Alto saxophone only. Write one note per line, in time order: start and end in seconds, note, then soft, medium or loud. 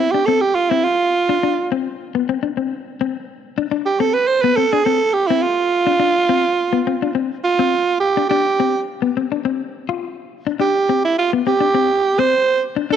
0.00 0.13 E4 medium
0.11 0.27 G4 medium
0.26 0.43 A4 medium
0.41 0.56 G4 medium
0.55 0.71 F4 medium
0.70 0.86 E4 medium
0.84 1.71 F4 medium
3.86 4.01 G4 medium
4.00 4.16 A4 medium
4.14 4.29 B4 medium
4.28 4.43 C5 medium
4.42 4.58 B4 medium
4.57 4.74 A4 medium
4.72 4.86 G#4 medium
4.85 5.15 A4 medium
5.13 5.29 G4 medium
5.28 5.44 E4 medium
5.43 7.15 F4 medium
7.44 7.98 F4 medium
8.00 8.28 G4 medium
8.29 8.83 G4 medium
10.61 11.01 G4 medium
11.05 11.17 E4 medium
11.19 11.31 F4 medium
11.47 12.21 G4 medium
12.19 12.62 C5 medium
12.93 12.96 A4 loud